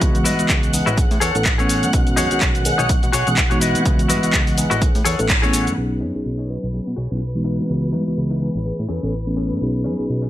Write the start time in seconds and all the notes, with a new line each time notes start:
Already playing: E4 F#4 B4 D#5 F#5 F#6
0.01 C#2 E3 G#3 B3 F#4 D#5, kick, closed hi-hat, shaker
0.15 closed hi-hat, shaker
0.24 G#2 E4 F#4 B4 D#5, open hi-hat, shaker
0.39 C#2 E3 G#3 B3 F#4 D#5, closed hi-hat, shaker
0.49 C#2, kick, clap, closed hi-hat, shaker
0.63 closed hi-hat, shaker
0.73 E3 G#3 B3 D#4 G#4, open hi-hat, shaker
0.86 A1 E4 F#4 B4 D#5, closed hi-hat, shaker
0.97 E3 A3 B3 C#4 G#4, kick, closed hi-hat, shaker
1.11 A2, open hi-hat, shaker
1.20 E2 G#4 A4 C#5, open hi-hat, shaker
1.35 A1 E3 A3 B3 C#4 A4, closed hi-hat, shaker
1.45 muted clean electric guitar stroke, kick, clap, closed hi-hat, shaker
1.58 E3 A3 B3 C#4 G#4 A4 C#5 G#5, closed hi-hat, shaker
1.69 open hi-hat, shaker
1.83 A2, closed hi-hat, shaker
1.93 B1 D#3 C#4 F#4, kick, closed hi-hat, shaker
2.07 closed hi-hat, shaker
2.16 F#2 D#4 G#4 C#5, open hi-hat, shaker
2.31 B1 D#3 G#3 B3 C#4 F#4, closed hi-hat, shaker
2.41 B1, kick, clap, closed hi-hat, shaker
2.55 closed hi-hat, shaker
2.65 D#3 G#3 B3 C#4 G#4, open hi-hat, shaker
2.78 B1 D#4 G#4 C#5, closed hi-hat, shaker
2.89 E3 G#3 B3 C#4 F#4, kick, closed hi-hat, shaker
3.03 B2, closed hi-hat, shaker
3.12 B1 F#4 G#4 C#5, open hi-hat, shaker
3.27 B1 E3 G#3 B3 C#4 G#4, closed hi-hat, shaker
3.37 kick, clap, closed hi-hat, shaker
3.50 E3 G#3 B3 D#4 F#4 G#4 C#5, closed hi-hat, shaker
3.60 E4 F#4 B4 D#5, open hi-hat, shaker
3.75 C#3, closed hi-hat, shaker
3.85 C#2 E3 G#3 B3 F#4 D#5, kick, closed hi-hat, shaker
3.99 closed hi-hat, shaker
4.08 G#2 E4 F#4 B4 D#5, open hi-hat, shaker
4.23 C#2 E3 G#3 B3 F#4 D#5, closed hi-hat, shaker
4.33 C#2, kick, clap, closed hi-hat, shaker
4.47 open hi-hat, shaker
4.57 E3 G#3 B3 D#4 G#4, open hi-hat, shaker
4.70 A1 E4 F#4 B4 D#5, closed hi-hat, shaker
4.81 E3 A3 B3 C#4 G#4, kick, closed hi-hat, shaker
4.95 A2, open hi-hat, shaker
5.05 E2 G#4 A4 C#5, open hi-hat, shaker
5.19 A1 E3 A3 B3 C#4 A4, closed hi-hat, shaker
5.29 muted clean electric guitar stroke, kick, clap, closed hi-hat, shaker
5.42 E3 A3 B3 C#4 G#4 A4 C#5 G#5, closed hi-hat, shaker
5.53 open hi-hat, shaker
5.67 A2, closed hi-hat, shaker
5.77 B1 F#3 B3 C#4 D#4 G#4 B4 B5
6.00 F#2 D#4 G#4 C#5
6.14 B1 F#3 B3 C#4 D#4 G#4
6.26 B1
6.38 D#4 G#4 C#5
6.49 F#3 B3 C#4 D#4 B4
6.63 B1
6.73 F#3 B3 C#4 E4 G#4, muted clean electric guitar stroke
6.87 B2
6.96 B1 F#4 G#4 C#5
7.11 B1 F#3 B3 C#4 E4 B4
7.35 E3 G#3 B3 D#4 F#4
7.44 D#4 E4 F#4 B4
7.59 C#3
7.69 C#2 E3 G#3 B3 F#4 D#5
7.92 G#2 D#4 E4 F#4 B4
8.07 C#2 E3 G#3 B3 F#4 D#5
8.17 C#2
8.30 D#4 E4 F#4 B4
8.41 E3 G#3 B3 D#4 G#4
8.55 A1
8.64 E3 A3 B3 C#4 G#4, muted clean electric guitar stroke
8.79 A2
8.88 E2 C#4 G#4 A4
9.03 A1 E3 A3 B3 C#4 A4
9.27 E3 A3 B3 C#4 G#5
9.36 C#4 G#4 A4
9.51 A2
9.61 B1 F#3 B3 C#4 D#4 G#4
9.84 F#2 C#4 D#4 G#4
9.98 B1 F#3 B3 C#4 D#4 G#4
10.10 B1
10.22 C#4 D#4 G#4